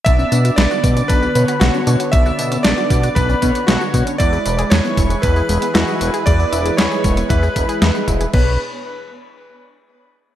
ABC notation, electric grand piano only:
X:1
M:4/4
L:1/16
Q:1/4=116
K:Bdor
V:1 name="Electric grand piano"
e4 d4 B4 F3 z | e4 d4 B4 F3 z | d4 c4 B4 F3 z | d4 c4 B6 z2 |
B2 z12 z2 |]